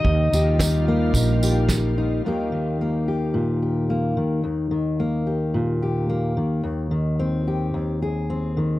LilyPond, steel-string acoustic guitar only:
\new Staff \with { instrumentName = "Steel-string acoustic guitar" } { \time 4/4 \key ees \major \tempo 4 = 109 << { r8 g'8 ees'8 bes8 ees'8 g'4 ees'8 | <ees bes ees' g'>4 bes8 g'4 g'8 bes4 | r4 bes8 g'4 g'8 bes4 | r4 c'8 g'4 aes'8 c'4 | } \\ { ees,4 ees4 bes,4 ees4 | ees,8 ees4. bes,4. ees8 | ees,8 ees4. bes,4. ees8 | ees,8 ees4. ees,4. ees8 | } >> }